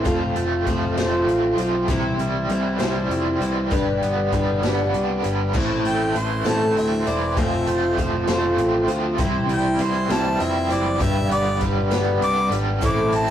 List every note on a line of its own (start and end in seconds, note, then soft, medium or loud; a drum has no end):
0.00 1.27 C4 medium
0.05 0.33 F1 medium
0.05 1.58 F2 medium
0.05 0.66 F3 medium
0.05 0.66 A3 medium
0.05 0.67 C4 medium
0.05 0.66 F4 medium
0.05 0.69 C5 medium
0.05 kick loud
0.05 closed hi-hat medium
0.35 0.63 F1 medium
0.35 0.96 A3 medium
0.35 closed hi-hat medium
0.66 0.94 F1 medium
0.66 1.57 F3 medium
0.66 0.97 A3 medium
0.66 0.97 C4 medium
0.66 0.97 F4 medium
0.66 0.96 C5 medium
0.66 kick medium
0.66 closed hi-hat medium
0.96 1.24 F1 medium
0.96 1.59 F3 medium
0.96 1.89 A3 medium
0.96 1.59 A3 medium
0.96 1.58 C4 medium
0.96 1.58 F4 medium
0.96 1.56 C5 medium
0.96 snare medium
0.96 closed hi-hat medium
1.26 1.54 A1 medium
1.26 1.88 C4 medium
1.26 closed hi-hat medium
1.56 1.84 B1 medium
1.56 1.89 F3 medium
1.56 1.89 F4 medium
1.56 1.88 C5 medium
1.56 closed hi-hat medium
1.60 1.89 C4 soft
1.88 2.16 C2 medium
1.88 3.41 C3 medium
1.88 2.50 C3 medium
1.88 2.50 E3 medium
1.88 2.49 G3 medium
1.88 2.49 C4 medium
1.88 2.50 E4 medium
1.88 2.50 C5 medium
1.88 kick loud
1.88 closed hi-hat medium
2.17 2.46 C2 medium
2.17 2.80 G3 medium
2.17 closed hi-hat medium
2.48 2.76 C2 medium
2.48 3.40 E3 medium
2.48 2.78 G3 medium
2.48 2.78 C4 medium
2.48 2.78 E4 medium
2.48 2.77 C5 medium
2.48 closed hi-hat medium
2.79 3.07 C2 medium
2.79 3.41 C3 medium
2.79 3.41 E3 medium
2.79 3.40 G3 medium
2.79 3.72 G3 medium
2.79 3.40 C4 medium
2.79 3.40 E4 medium
2.79 3.39 C5 medium
2.79 snare loud
2.79 closed hi-hat medium
3.09 3.37 F2 medium
3.09 3.71 C4 medium
3.09 closed hi-hat medium
3.40 3.73 C2 medium
3.40 3.71 E3 medium
3.40 3.69 G3 soft
3.40 3.71 C4 medium
3.40 3.71 E4 soft
3.40 3.71 C5 medium
3.40 closed hi-hat medium
3.71 3.99 G1 medium
3.71 5.24 G2 medium
3.71 4.31 G3 medium
3.71 4.32 D4 medium
3.71 4.32 G4 medium
3.71 4.33 B4 medium
3.71 kick loud
3.71 closed hi-hat medium
4.01 4.29 G1 medium
4.01 4.63 B3 medium
4.01 closed hi-hat medium
4.32 4.60 G1 medium
4.32 4.62 G3 medium
4.32 5.23 G3 medium
4.32 4.63 D4 medium
4.32 4.62 G4 medium
4.32 4.62 B4 medium
4.32 kick medium
4.32 closed hi-hat medium
4.62 4.90 G1 medium
4.62 5.24 G3 medium
4.62 5.55 B3 medium
4.62 5.24 D4 medium
4.62 5.23 G4 medium
4.62 5.21 B4 medium
4.62 snare loud
4.62 closed hi-hat medium
4.93 5.21 C2 medium
4.93 5.54 D4 medium
4.93 closed hi-hat medium
5.22 5.51 G1 medium
5.22 5.54 G3 medium
5.22 5.54 D4 soft
5.22 5.54 G4 soft
5.22 5.53 B4 medium
5.22 closed hi-hat medium
5.53 5.82 A1 medium
5.53 6.14 A2 medium
5.53 7.07 A2 medium
5.53 6.14 E3 medium
5.53 6.13 A3 medium
5.53 6.14 C4 medium
5.53 6.14 E4 medium
5.53 6.15 C5 loud
5.53 kick loud
5.53 crash loud
5.84 6.12 A1 medium
5.84 6.45 A3 medium
5.84 6.20 G5 medium
5.84 closed hi-hat medium
6.14 6.42 A1 medium
6.14 7.05 E3 medium
6.14 6.44 A3 medium
6.14 6.44 C4 medium
6.14 6.43 E4 medium
6.14 6.43 C5 medium
6.14 closed hi-hat medium
6.18 6.50 C6 medium
6.44 6.72 A1 medium
6.44 7.06 A2 medium
6.44 7.06 E3 medium
6.44 7.06 A3 medium
6.44 7.37 A3 medium
6.44 7.07 C4 medium
6.44 7.06 E4 medium
6.44 7.06 C5 medium
6.44 snare loud
6.44 closed hi-hat medium
6.48 6.76 A5 loud
6.75 7.03 D2 medium
6.75 8.58 C4 medium
6.75 7.10 E5 medium
6.75 closed hi-hat medium
7.05 7.37 E1 medium
7.05 7.36 E3 medium
7.05 7.36 A3 soft
7.05 7.36 C4 soft
7.05 7.37 E4 soft
7.05 7.37 C5 medium
7.05 7.39 D5 medium
7.05 closed hi-hat medium
7.37 7.64 F1 medium
7.37 8.88 F2 medium
7.37 7.97 F3 medium
7.37 7.96 A3 medium
7.37 7.98 C4 medium
7.37 7.97 F4 medium
7.37 7.99 C5 medium
7.37 7.71 E5 medium
7.37 kick loud
7.37 closed hi-hat medium
7.67 7.95 F1 medium
7.67 8.27 A3 medium
7.67 7.98 C5 medium
7.67 closed hi-hat medium
7.97 8.25 F1 medium
7.97 8.87 F3 medium
7.97 8.27 A3 medium
7.97 8.27 C4 medium
7.97 8.27 F4 medium
7.97 8.26 C5 medium
7.97 kick medium
7.97 closed hi-hat medium
8.27 8.55 F1 medium
8.27 8.89 F3 medium
8.27 9.19 A3 medium
8.27 8.89 A3 medium
8.27 8.88 C4 medium
8.27 8.87 F4 medium
8.27 8.86 C5 medium
8.27 snare loud
8.27 closed hi-hat medium
8.57 8.85 A1 medium
8.57 9.19 C4 medium
8.57 closed hi-hat medium
8.87 9.15 D2 medium
8.87 9.18 F3 medium
8.87 9.18 C4 soft
8.87 9.19 F4 medium
8.87 9.18 C5 medium
8.87 closed hi-hat medium
9.18 9.46 C2 medium
9.18 10.70 C3 medium
9.18 9.79 C3 medium
9.18 9.79 E3 medium
9.18 9.78 G3 medium
9.18 9.79 C4 medium
9.18 9.79 E4 medium
9.18 9.80 C5 medium
9.18 kick loud
9.18 closed hi-hat medium
9.47 9.76 C2 medium
9.47 10.08 G3 medium
9.47 closed hi-hat medium
9.53 9.84 G5 medium
9.78 10.06 C2 medium
9.78 10.68 E3 medium
9.78 10.09 G3 medium
9.78 10.09 C4 medium
9.78 10.08 E4 medium
9.78 10.08 C5 medium
9.78 closed hi-hat medium
9.83 10.15 C6 medium
10.09 10.37 C2 medium
10.09 10.71 C3 medium
10.09 10.71 E3 medium
10.09 11.00 G3 medium
10.09 10.70 G3 medium
10.09 10.69 C4 medium
10.09 10.69 E4 medium
10.09 10.68 C5 medium
10.09 snare loud
10.09 closed hi-hat medium
10.13 10.44 A5 loud
10.39 10.67 F2 medium
10.39 11.01 C4 medium
10.39 10.74 E5 loud
10.39 closed hi-hat medium
10.69 11.00 F#1 medium
10.69 11.00 E3 medium
10.69 10.98 G3 soft
10.69 11.00 C4 soft
10.69 11.00 E4 soft
10.69 11.00 C5 soft
10.69 11.03 D5 medium
10.69 closed hi-hat medium
10.99 11.28 G1 medium
10.99 12.52 G2 medium
10.99 11.60 G3 medium
10.99 11.60 D4 medium
10.99 11.61 G4 medium
10.99 11.61 B4 medium
10.99 11.31 E5 medium
10.99 kick loud
10.99 closed hi-hat medium
11.29 11.58 G1 medium
11.29 11.90 B3 medium
11.29 11.61 D5 loud
11.29 closed hi-hat medium
11.60 11.88 G1 medium
11.60 11.91 G3 medium
11.60 12.52 G3 medium
11.60 11.90 D4 medium
11.60 11.90 G4 medium
11.60 11.90 B4 medium
11.60 kick medium
11.60 closed hi-hat medium
11.90 12.18 G1 medium
11.90 12.52 G3 medium
11.90 12.82 B3 medium
11.90 12.52 D4 medium
11.90 12.52 G4 medium
11.90 12.50 B4 medium
11.90 snare loud
11.90 closed hi-hat medium
12.20 12.48 C2 medium
12.20 12.83 D4 medium
12.20 12.52 D6 loud
12.20 closed hi-hat medium
12.50 12.78 G#1 medium
12.50 12.83 G3 medium
12.50 12.82 D4 soft
12.50 12.82 G4 soft
12.50 12.82 B4 medium
12.50 closed hi-hat medium
12.81 13.10 A1 medium
12.81 13.30 A2 medium
12.81 13.30 E3 medium
12.81 13.30 A3 medium
12.81 13.30 C4 medium
12.81 13.30 E4 medium
12.81 13.30 C5 medium
12.81 kick loud
12.81 closed hi-hat medium
12.81 shaker medium
12.85 13.13 D6 medium
12.97 shaker soft
13.11 13.30 A1 medium
13.11 13.30 C4 medium
13.11 closed hi-hat medium
13.16 13.30 A5 medium